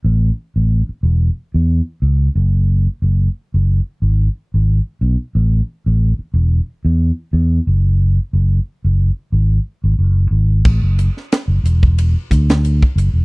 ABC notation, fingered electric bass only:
X:1
M:4/4
L:1/16
Q:"Swing 16ths" 1/4=90
K:F#m
V:1 name="Fingered electric bass" clef=bass
A,,,2 z A,,,2 z E,,,2 z E,,2 z C,,2 F,,,2- | F,,,2 F,,,2 z F,,,2 z G,,,2 z G,,,2 z B,,, z | A,,,2 z A,,,2 z E,,,2 z E,,2 z E,,2 F,,,2- | F,,,2 F,,,2 z F,,,2 z G,,,2 z G,,, F,,,2 G,,,2 |
A,,, F,,,2 z2 F,,, E,,,4 D,,4 F,,, E,,, |]